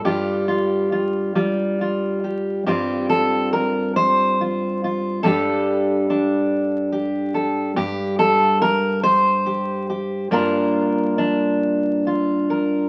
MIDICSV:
0, 0, Header, 1, 2, 480
1, 0, Start_track
1, 0, Tempo, 870827
1, 25, Time_signature, 6, 3, 24, 8
1, 2425, Tempo, 842697
1, 5305, Tempo, 870827
1, 7197, End_track
2, 0, Start_track
2, 0, Title_t, "Steel-string acoustic guitar"
2, 0, Program_c, 0, 25
2, 25, Note_on_c, 0, 43, 56
2, 27, Note_on_c, 0, 67, 66
2, 30, Note_on_c, 0, 55, 40
2, 33, Note_on_c, 0, 65, 42
2, 258, Note_off_c, 0, 65, 0
2, 265, Note_on_c, 0, 65, 38
2, 501, Note_off_c, 0, 65, 0
2, 508, Note_on_c, 0, 65, 39
2, 740, Note_off_c, 0, 55, 0
2, 742, Note_off_c, 0, 65, 0
2, 746, Note_on_c, 0, 55, 53
2, 749, Note_on_c, 0, 65, 39
2, 988, Note_off_c, 0, 65, 0
2, 998, Note_on_c, 0, 65, 34
2, 1228, Note_off_c, 0, 67, 0
2, 1235, Note_on_c, 0, 67, 36
2, 1444, Note_off_c, 0, 67, 0
2, 1446, Note_off_c, 0, 65, 0
2, 1463, Note_off_c, 0, 43, 0
2, 1468, Note_off_c, 0, 55, 0
2, 1469, Note_on_c, 0, 43, 65
2, 1471, Note_on_c, 0, 67, 78
2, 1474, Note_on_c, 0, 55, 44
2, 1477, Note_on_c, 0, 60, 44
2, 1480, Note_on_c, 0, 65, 43
2, 1703, Note_off_c, 0, 67, 0
2, 1705, Note_on_c, 0, 69, 81
2, 1942, Note_off_c, 0, 69, 0
2, 1945, Note_on_c, 0, 70, 81
2, 2181, Note_off_c, 0, 70, 0
2, 2183, Note_on_c, 0, 72, 100
2, 2424, Note_off_c, 0, 65, 0
2, 2431, Note_on_c, 0, 65, 41
2, 2670, Note_off_c, 0, 65, 0
2, 2676, Note_on_c, 0, 65, 42
2, 2884, Note_off_c, 0, 65, 0
2, 2896, Note_off_c, 0, 72, 0
2, 2899, Note_on_c, 0, 69, 87
2, 2903, Note_off_c, 0, 43, 0
2, 2905, Note_on_c, 0, 43, 75
2, 2906, Note_off_c, 0, 55, 0
2, 2908, Note_on_c, 0, 55, 49
2, 2910, Note_off_c, 0, 60, 0
2, 2912, Note_on_c, 0, 62, 49
2, 2918, Note_on_c, 0, 67, 48
2, 3391, Note_off_c, 0, 62, 0
2, 3393, Note_on_c, 0, 62, 46
2, 3856, Note_off_c, 0, 67, 0
2, 3863, Note_on_c, 0, 67, 48
2, 4092, Note_off_c, 0, 69, 0
2, 4102, Note_on_c, 0, 69, 46
2, 4311, Note_off_c, 0, 67, 0
2, 4312, Note_off_c, 0, 69, 0
2, 4335, Note_off_c, 0, 43, 0
2, 4341, Note_on_c, 0, 43, 80
2, 4343, Note_on_c, 0, 67, 87
2, 4581, Note_off_c, 0, 67, 0
2, 4583, Note_on_c, 0, 69, 90
2, 4824, Note_off_c, 0, 69, 0
2, 4826, Note_on_c, 0, 70, 89
2, 5063, Note_off_c, 0, 70, 0
2, 5065, Note_on_c, 0, 72, 106
2, 5082, Note_off_c, 0, 62, 0
2, 5307, Note_on_c, 0, 67, 46
2, 5541, Note_off_c, 0, 67, 0
2, 5548, Note_on_c, 0, 67, 43
2, 5752, Note_off_c, 0, 67, 0
2, 5769, Note_off_c, 0, 43, 0
2, 5776, Note_off_c, 0, 55, 0
2, 5776, Note_on_c, 0, 43, 69
2, 5777, Note_off_c, 0, 72, 0
2, 5779, Note_on_c, 0, 58, 47
2, 5782, Note_on_c, 0, 62, 51
2, 5786, Note_on_c, 0, 65, 49
2, 5787, Note_on_c, 0, 70, 80
2, 6249, Note_off_c, 0, 62, 0
2, 6256, Note_on_c, 0, 62, 47
2, 6738, Note_off_c, 0, 65, 0
2, 6745, Note_on_c, 0, 65, 43
2, 6977, Note_off_c, 0, 70, 0
2, 6983, Note_on_c, 0, 70, 41
2, 7196, Note_off_c, 0, 70, 0
2, 7197, Note_off_c, 0, 43, 0
2, 7197, Note_off_c, 0, 58, 0
2, 7197, Note_off_c, 0, 62, 0
2, 7197, Note_off_c, 0, 65, 0
2, 7197, End_track
0, 0, End_of_file